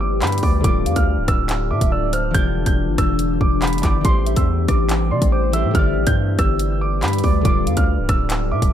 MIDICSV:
0, 0, Header, 1, 7, 480
1, 0, Start_track
1, 0, Tempo, 425532
1, 725, Time_signature, 4, 2, 24, 8
1, 9847, End_track
2, 0, Start_track
2, 0, Title_t, "Grand piano"
2, 0, Program_c, 0, 0
2, 6, Note_on_c, 0, 86, 85
2, 228, Note_off_c, 0, 86, 0
2, 247, Note_on_c, 0, 83, 86
2, 468, Note_off_c, 0, 83, 0
2, 486, Note_on_c, 0, 86, 88
2, 708, Note_off_c, 0, 86, 0
2, 726, Note_on_c, 0, 86, 107
2, 1064, Note_off_c, 0, 86, 0
2, 1084, Note_on_c, 0, 89, 81
2, 1423, Note_off_c, 0, 89, 0
2, 1447, Note_on_c, 0, 88, 90
2, 1897, Note_off_c, 0, 88, 0
2, 1925, Note_on_c, 0, 86, 81
2, 2147, Note_off_c, 0, 86, 0
2, 2166, Note_on_c, 0, 88, 82
2, 2388, Note_off_c, 0, 88, 0
2, 2404, Note_on_c, 0, 89, 81
2, 2627, Note_off_c, 0, 89, 0
2, 2645, Note_on_c, 0, 91, 107
2, 2984, Note_off_c, 0, 91, 0
2, 3005, Note_on_c, 0, 91, 88
2, 3344, Note_off_c, 0, 91, 0
2, 3365, Note_on_c, 0, 88, 88
2, 3816, Note_off_c, 0, 88, 0
2, 3846, Note_on_c, 0, 86, 85
2, 4068, Note_off_c, 0, 86, 0
2, 4086, Note_on_c, 0, 83, 84
2, 4308, Note_off_c, 0, 83, 0
2, 4324, Note_on_c, 0, 86, 90
2, 4547, Note_off_c, 0, 86, 0
2, 4566, Note_on_c, 0, 84, 111
2, 4904, Note_off_c, 0, 84, 0
2, 4923, Note_on_c, 0, 88, 74
2, 5263, Note_off_c, 0, 88, 0
2, 5284, Note_on_c, 0, 86, 88
2, 5736, Note_off_c, 0, 86, 0
2, 5765, Note_on_c, 0, 84, 78
2, 5987, Note_off_c, 0, 84, 0
2, 6004, Note_on_c, 0, 86, 76
2, 6227, Note_off_c, 0, 86, 0
2, 6244, Note_on_c, 0, 88, 78
2, 6467, Note_off_c, 0, 88, 0
2, 6483, Note_on_c, 0, 89, 97
2, 6823, Note_off_c, 0, 89, 0
2, 6845, Note_on_c, 0, 91, 86
2, 7184, Note_off_c, 0, 91, 0
2, 7205, Note_on_c, 0, 88, 93
2, 7656, Note_off_c, 0, 88, 0
2, 7686, Note_on_c, 0, 86, 85
2, 7908, Note_off_c, 0, 86, 0
2, 7928, Note_on_c, 0, 83, 84
2, 8149, Note_off_c, 0, 83, 0
2, 8166, Note_on_c, 0, 86, 90
2, 8388, Note_off_c, 0, 86, 0
2, 8406, Note_on_c, 0, 86, 108
2, 8744, Note_off_c, 0, 86, 0
2, 8765, Note_on_c, 0, 89, 82
2, 9104, Note_off_c, 0, 89, 0
2, 9127, Note_on_c, 0, 88, 86
2, 9578, Note_off_c, 0, 88, 0
2, 9605, Note_on_c, 0, 86, 79
2, 9827, Note_off_c, 0, 86, 0
2, 9847, End_track
3, 0, Start_track
3, 0, Title_t, "Soft synth lead"
3, 0, Program_c, 1, 80
3, 486, Note_on_c, 1, 74, 82
3, 714, Note_off_c, 1, 74, 0
3, 967, Note_on_c, 1, 77, 79
3, 1194, Note_off_c, 1, 77, 0
3, 1922, Note_on_c, 1, 76, 86
3, 2152, Note_off_c, 1, 76, 0
3, 2165, Note_on_c, 1, 74, 93
3, 2393, Note_off_c, 1, 74, 0
3, 2407, Note_on_c, 1, 72, 82
3, 2634, Note_off_c, 1, 72, 0
3, 4804, Note_on_c, 1, 76, 95
3, 5033, Note_off_c, 1, 76, 0
3, 5769, Note_on_c, 1, 74, 80
3, 5995, Note_off_c, 1, 74, 0
3, 6007, Note_on_c, 1, 72, 90
3, 6234, Note_off_c, 1, 72, 0
3, 6244, Note_on_c, 1, 76, 86
3, 6473, Note_off_c, 1, 76, 0
3, 8166, Note_on_c, 1, 74, 84
3, 8394, Note_off_c, 1, 74, 0
3, 8647, Note_on_c, 1, 77, 76
3, 8874, Note_off_c, 1, 77, 0
3, 9603, Note_on_c, 1, 76, 85
3, 9832, Note_off_c, 1, 76, 0
3, 9847, End_track
4, 0, Start_track
4, 0, Title_t, "Ambient pad"
4, 0, Program_c, 2, 92
4, 0, Note_on_c, 2, 55, 86
4, 0, Note_on_c, 2, 67, 77
4, 0, Note_on_c, 2, 71, 77
4, 0, Note_on_c, 2, 74, 91
4, 706, Note_off_c, 2, 55, 0
4, 706, Note_off_c, 2, 67, 0
4, 706, Note_off_c, 2, 71, 0
4, 706, Note_off_c, 2, 74, 0
4, 725, Note_on_c, 2, 50, 81
4, 725, Note_on_c, 2, 62, 76
4, 725, Note_on_c, 2, 65, 76
4, 725, Note_on_c, 2, 69, 94
4, 2626, Note_off_c, 2, 50, 0
4, 2626, Note_off_c, 2, 65, 0
4, 2626, Note_off_c, 2, 69, 0
4, 2644, Note_on_c, 2, 52, 82
4, 2644, Note_on_c, 2, 59, 76
4, 2645, Note_on_c, 2, 67, 92
4, 4527, Note_off_c, 2, 62, 0
4, 4545, Note_off_c, 2, 52, 0
4, 4546, Note_off_c, 2, 59, 0
4, 4563, Note_on_c, 2, 57, 83
4, 4563, Note_on_c, 2, 64, 74
4, 4564, Note_on_c, 2, 72, 93
4, 6465, Note_off_c, 2, 57, 0
4, 6465, Note_off_c, 2, 64, 0
4, 6465, Note_off_c, 2, 72, 0
4, 6484, Note_on_c, 2, 74, 94
4, 6485, Note_on_c, 2, 55, 85
4, 6485, Note_on_c, 2, 71, 75
4, 8360, Note_off_c, 2, 67, 0
4, 8386, Note_off_c, 2, 55, 0
4, 8386, Note_off_c, 2, 71, 0
4, 8386, Note_off_c, 2, 74, 0
4, 8405, Note_on_c, 2, 50, 83
4, 8405, Note_on_c, 2, 62, 77
4, 8405, Note_on_c, 2, 65, 77
4, 8405, Note_on_c, 2, 69, 90
4, 9847, Note_off_c, 2, 50, 0
4, 9847, Note_off_c, 2, 62, 0
4, 9847, Note_off_c, 2, 65, 0
4, 9847, Note_off_c, 2, 69, 0
4, 9847, End_track
5, 0, Start_track
5, 0, Title_t, "Harp"
5, 0, Program_c, 3, 46
5, 0, Note_on_c, 3, 50, 69
5, 0, Note_on_c, 3, 59, 67
5, 0, Note_on_c, 3, 67, 62
5, 0, Note_on_c, 3, 74, 79
5, 667, Note_off_c, 3, 50, 0
5, 681, Note_on_c, 3, 50, 67
5, 710, Note_on_c, 3, 57, 57
5, 739, Note_on_c, 3, 65, 65
5, 763, Note_off_c, 3, 74, 0
5, 768, Note_on_c, 3, 74, 74
5, 1476, Note_off_c, 3, 67, 0
5, 2295, Note_off_c, 3, 59, 0
5, 2601, Note_on_c, 3, 52, 66
5, 2630, Note_on_c, 3, 59, 67
5, 2659, Note_on_c, 3, 67, 66
5, 2668, Note_off_c, 3, 65, 0
5, 2684, Note_off_c, 3, 74, 0
5, 2688, Note_on_c, 3, 74, 75
5, 2702, Note_off_c, 3, 50, 0
5, 4289, Note_off_c, 3, 52, 0
5, 4302, Note_on_c, 3, 52, 54
5, 4313, Note_off_c, 3, 59, 0
5, 4317, Note_on_c, 3, 59, 48
5, 4328, Note_off_c, 3, 67, 0
5, 4332, Note_on_c, 3, 67, 49
5, 4342, Note_off_c, 3, 74, 0
5, 4346, Note_on_c, 3, 74, 59
5, 4465, Note_off_c, 3, 57, 0
5, 4507, Note_off_c, 3, 52, 0
5, 4521, Note_on_c, 3, 52, 67
5, 4550, Note_on_c, 3, 57, 61
5, 4561, Note_off_c, 3, 59, 0
5, 4565, Note_off_c, 3, 67, 0
5, 4576, Note_off_c, 3, 74, 0
5, 4579, Note_on_c, 3, 67, 62
5, 4608, Note_on_c, 3, 72, 76
5, 6209, Note_off_c, 3, 52, 0
5, 6223, Note_on_c, 3, 52, 54
5, 6233, Note_off_c, 3, 57, 0
5, 6237, Note_on_c, 3, 57, 49
5, 6247, Note_off_c, 3, 67, 0
5, 6251, Note_on_c, 3, 67, 45
5, 6261, Note_off_c, 3, 72, 0
5, 6266, Note_on_c, 3, 72, 56
5, 6440, Note_on_c, 3, 50, 68
5, 6469, Note_on_c, 3, 59, 68
5, 6481, Note_off_c, 3, 57, 0
5, 6485, Note_off_c, 3, 67, 0
5, 6496, Note_off_c, 3, 72, 0
5, 6498, Note_on_c, 3, 67, 64
5, 6527, Note_on_c, 3, 74, 81
5, 6542, Note_off_c, 3, 52, 0
5, 8347, Note_off_c, 3, 50, 0
5, 8361, Note_on_c, 3, 50, 68
5, 8390, Note_on_c, 3, 57, 59
5, 8419, Note_on_c, 3, 65, 64
5, 8443, Note_off_c, 3, 74, 0
5, 8448, Note_on_c, 3, 74, 75
5, 9153, Note_off_c, 3, 67, 0
5, 9847, Note_off_c, 3, 50, 0
5, 9847, Note_off_c, 3, 57, 0
5, 9847, Note_off_c, 3, 59, 0
5, 9847, Note_off_c, 3, 65, 0
5, 9847, Note_off_c, 3, 74, 0
5, 9847, End_track
6, 0, Start_track
6, 0, Title_t, "808-style bass"
6, 0, Program_c, 4, 38
6, 0, Note_on_c, 4, 31, 111
6, 246, Note_on_c, 4, 43, 100
6, 262, Note_off_c, 4, 31, 0
6, 474, Note_off_c, 4, 43, 0
6, 486, Note_on_c, 4, 38, 108
6, 716, Note_off_c, 4, 38, 0
6, 725, Note_on_c, 4, 26, 107
6, 966, Note_on_c, 4, 41, 98
6, 983, Note_off_c, 4, 26, 0
6, 1080, Note_off_c, 4, 41, 0
6, 1086, Note_on_c, 4, 38, 107
6, 1325, Note_on_c, 4, 24, 100
6, 1342, Note_off_c, 4, 38, 0
6, 1439, Note_off_c, 4, 24, 0
6, 1445, Note_on_c, 4, 26, 112
6, 1925, Note_on_c, 4, 45, 99
6, 1942, Note_off_c, 4, 26, 0
6, 2040, Note_off_c, 4, 45, 0
6, 2045, Note_on_c, 4, 26, 107
6, 2621, Note_off_c, 4, 26, 0
6, 2645, Note_on_c, 4, 28, 113
6, 2991, Note_off_c, 4, 28, 0
6, 3006, Note_on_c, 4, 28, 104
6, 3245, Note_on_c, 4, 31, 101
6, 3261, Note_off_c, 4, 28, 0
6, 3359, Note_off_c, 4, 31, 0
6, 3365, Note_on_c, 4, 28, 106
6, 3826, Note_off_c, 4, 28, 0
6, 3844, Note_on_c, 4, 28, 105
6, 4204, Note_on_c, 4, 29, 100
6, 4221, Note_off_c, 4, 28, 0
6, 4319, Note_off_c, 4, 29, 0
6, 4326, Note_on_c, 4, 31, 108
6, 4556, Note_off_c, 4, 31, 0
6, 4565, Note_on_c, 4, 33, 114
6, 4911, Note_off_c, 4, 33, 0
6, 4926, Note_on_c, 4, 40, 100
6, 5271, Note_off_c, 4, 40, 0
6, 5285, Note_on_c, 4, 33, 110
6, 5765, Note_on_c, 4, 48, 95
6, 5782, Note_off_c, 4, 33, 0
6, 5879, Note_off_c, 4, 48, 0
6, 5885, Note_on_c, 4, 33, 108
6, 6365, Note_on_c, 4, 45, 101
6, 6382, Note_off_c, 4, 33, 0
6, 6479, Note_off_c, 4, 45, 0
6, 6485, Note_on_c, 4, 31, 107
6, 6725, Note_on_c, 4, 33, 98
6, 6742, Note_off_c, 4, 31, 0
6, 6840, Note_off_c, 4, 33, 0
6, 6846, Note_on_c, 4, 43, 102
6, 7191, Note_off_c, 4, 43, 0
6, 7205, Note_on_c, 4, 31, 109
6, 7926, Note_on_c, 4, 43, 103
6, 7943, Note_off_c, 4, 31, 0
6, 8154, Note_off_c, 4, 43, 0
6, 8165, Note_on_c, 4, 38, 110
6, 8396, Note_off_c, 4, 38, 0
6, 8405, Note_on_c, 4, 26, 106
6, 8646, Note_on_c, 4, 41, 100
6, 8663, Note_off_c, 4, 26, 0
6, 8760, Note_off_c, 4, 41, 0
6, 8765, Note_on_c, 4, 38, 104
6, 9005, Note_on_c, 4, 24, 100
6, 9022, Note_off_c, 4, 38, 0
6, 9119, Note_off_c, 4, 24, 0
6, 9124, Note_on_c, 4, 26, 110
6, 9606, Note_on_c, 4, 45, 94
6, 9623, Note_off_c, 4, 26, 0
6, 9720, Note_off_c, 4, 45, 0
6, 9725, Note_on_c, 4, 26, 102
6, 9847, Note_off_c, 4, 26, 0
6, 9847, End_track
7, 0, Start_track
7, 0, Title_t, "Drums"
7, 245, Note_on_c, 9, 42, 54
7, 246, Note_on_c, 9, 39, 112
7, 306, Note_off_c, 9, 42, 0
7, 306, Note_on_c, 9, 42, 55
7, 359, Note_off_c, 9, 39, 0
7, 365, Note_off_c, 9, 42, 0
7, 365, Note_on_c, 9, 42, 55
7, 426, Note_off_c, 9, 42, 0
7, 426, Note_on_c, 9, 42, 57
7, 483, Note_on_c, 9, 46, 52
7, 486, Note_on_c, 9, 36, 90
7, 539, Note_off_c, 9, 42, 0
7, 596, Note_off_c, 9, 46, 0
7, 599, Note_off_c, 9, 36, 0
7, 725, Note_on_c, 9, 36, 119
7, 725, Note_on_c, 9, 42, 87
7, 838, Note_off_c, 9, 36, 0
7, 838, Note_off_c, 9, 42, 0
7, 971, Note_on_c, 9, 42, 67
7, 1083, Note_off_c, 9, 42, 0
7, 1083, Note_on_c, 9, 42, 88
7, 1086, Note_on_c, 9, 36, 99
7, 1196, Note_off_c, 9, 42, 0
7, 1199, Note_off_c, 9, 36, 0
7, 1444, Note_on_c, 9, 42, 73
7, 1445, Note_on_c, 9, 36, 100
7, 1445, Note_on_c, 9, 37, 96
7, 1557, Note_off_c, 9, 42, 0
7, 1558, Note_off_c, 9, 36, 0
7, 1558, Note_off_c, 9, 37, 0
7, 1679, Note_on_c, 9, 42, 91
7, 1685, Note_on_c, 9, 39, 125
7, 1792, Note_off_c, 9, 42, 0
7, 1798, Note_off_c, 9, 39, 0
7, 2044, Note_on_c, 9, 36, 93
7, 2045, Note_on_c, 9, 42, 81
7, 2157, Note_off_c, 9, 36, 0
7, 2158, Note_off_c, 9, 42, 0
7, 2402, Note_on_c, 9, 42, 75
7, 2515, Note_off_c, 9, 42, 0
7, 2645, Note_on_c, 9, 36, 117
7, 2645, Note_on_c, 9, 42, 86
7, 2758, Note_off_c, 9, 36, 0
7, 2758, Note_off_c, 9, 42, 0
7, 3003, Note_on_c, 9, 42, 84
7, 3006, Note_on_c, 9, 36, 95
7, 3116, Note_off_c, 9, 42, 0
7, 3118, Note_off_c, 9, 36, 0
7, 3364, Note_on_c, 9, 36, 98
7, 3364, Note_on_c, 9, 37, 101
7, 3364, Note_on_c, 9, 42, 73
7, 3476, Note_off_c, 9, 42, 0
7, 3477, Note_off_c, 9, 36, 0
7, 3477, Note_off_c, 9, 37, 0
7, 3598, Note_on_c, 9, 42, 93
7, 3711, Note_off_c, 9, 42, 0
7, 3844, Note_on_c, 9, 36, 103
7, 3957, Note_off_c, 9, 36, 0
7, 4084, Note_on_c, 9, 39, 118
7, 4084, Note_on_c, 9, 42, 55
7, 4144, Note_off_c, 9, 42, 0
7, 4144, Note_on_c, 9, 42, 56
7, 4197, Note_off_c, 9, 39, 0
7, 4205, Note_off_c, 9, 42, 0
7, 4205, Note_on_c, 9, 42, 57
7, 4265, Note_off_c, 9, 42, 0
7, 4265, Note_on_c, 9, 42, 54
7, 4322, Note_off_c, 9, 42, 0
7, 4322, Note_on_c, 9, 42, 75
7, 4324, Note_on_c, 9, 39, 77
7, 4325, Note_on_c, 9, 36, 92
7, 4435, Note_off_c, 9, 42, 0
7, 4437, Note_off_c, 9, 39, 0
7, 4438, Note_off_c, 9, 36, 0
7, 4564, Note_on_c, 9, 42, 84
7, 4565, Note_on_c, 9, 36, 119
7, 4677, Note_off_c, 9, 42, 0
7, 4678, Note_off_c, 9, 36, 0
7, 4811, Note_on_c, 9, 42, 64
7, 4923, Note_off_c, 9, 42, 0
7, 4923, Note_on_c, 9, 42, 87
7, 4926, Note_on_c, 9, 36, 95
7, 5036, Note_off_c, 9, 42, 0
7, 5038, Note_off_c, 9, 36, 0
7, 5284, Note_on_c, 9, 42, 71
7, 5285, Note_on_c, 9, 36, 99
7, 5285, Note_on_c, 9, 37, 97
7, 5397, Note_off_c, 9, 36, 0
7, 5397, Note_off_c, 9, 42, 0
7, 5398, Note_off_c, 9, 37, 0
7, 5519, Note_on_c, 9, 42, 90
7, 5525, Note_on_c, 9, 39, 122
7, 5632, Note_off_c, 9, 42, 0
7, 5638, Note_off_c, 9, 39, 0
7, 5885, Note_on_c, 9, 36, 93
7, 5885, Note_on_c, 9, 42, 79
7, 5997, Note_off_c, 9, 36, 0
7, 5998, Note_off_c, 9, 42, 0
7, 6242, Note_on_c, 9, 42, 77
7, 6355, Note_off_c, 9, 42, 0
7, 6484, Note_on_c, 9, 42, 88
7, 6485, Note_on_c, 9, 36, 122
7, 6597, Note_off_c, 9, 42, 0
7, 6598, Note_off_c, 9, 36, 0
7, 6843, Note_on_c, 9, 42, 84
7, 6846, Note_on_c, 9, 36, 97
7, 6955, Note_off_c, 9, 42, 0
7, 6959, Note_off_c, 9, 36, 0
7, 7204, Note_on_c, 9, 42, 70
7, 7205, Note_on_c, 9, 36, 104
7, 7205, Note_on_c, 9, 37, 98
7, 7317, Note_off_c, 9, 37, 0
7, 7317, Note_off_c, 9, 42, 0
7, 7318, Note_off_c, 9, 36, 0
7, 7439, Note_on_c, 9, 42, 90
7, 7552, Note_off_c, 9, 42, 0
7, 7925, Note_on_c, 9, 39, 116
7, 7925, Note_on_c, 9, 42, 57
7, 7984, Note_off_c, 9, 42, 0
7, 7984, Note_on_c, 9, 42, 54
7, 8038, Note_off_c, 9, 39, 0
7, 8044, Note_off_c, 9, 42, 0
7, 8044, Note_on_c, 9, 42, 54
7, 8104, Note_off_c, 9, 42, 0
7, 8104, Note_on_c, 9, 42, 57
7, 8161, Note_on_c, 9, 46, 54
7, 8165, Note_on_c, 9, 36, 88
7, 8217, Note_off_c, 9, 42, 0
7, 8274, Note_off_c, 9, 46, 0
7, 8278, Note_off_c, 9, 36, 0
7, 8404, Note_on_c, 9, 42, 86
7, 8405, Note_on_c, 9, 36, 117
7, 8517, Note_off_c, 9, 42, 0
7, 8518, Note_off_c, 9, 36, 0
7, 8651, Note_on_c, 9, 42, 64
7, 8762, Note_off_c, 9, 42, 0
7, 8762, Note_on_c, 9, 42, 88
7, 8766, Note_on_c, 9, 36, 99
7, 8875, Note_off_c, 9, 42, 0
7, 8878, Note_off_c, 9, 36, 0
7, 9124, Note_on_c, 9, 42, 72
7, 9125, Note_on_c, 9, 36, 103
7, 9125, Note_on_c, 9, 37, 99
7, 9237, Note_off_c, 9, 42, 0
7, 9238, Note_off_c, 9, 36, 0
7, 9238, Note_off_c, 9, 37, 0
7, 9359, Note_on_c, 9, 42, 92
7, 9366, Note_on_c, 9, 39, 127
7, 9472, Note_off_c, 9, 42, 0
7, 9478, Note_off_c, 9, 39, 0
7, 9725, Note_on_c, 9, 36, 94
7, 9725, Note_on_c, 9, 42, 79
7, 9838, Note_off_c, 9, 36, 0
7, 9838, Note_off_c, 9, 42, 0
7, 9847, End_track
0, 0, End_of_file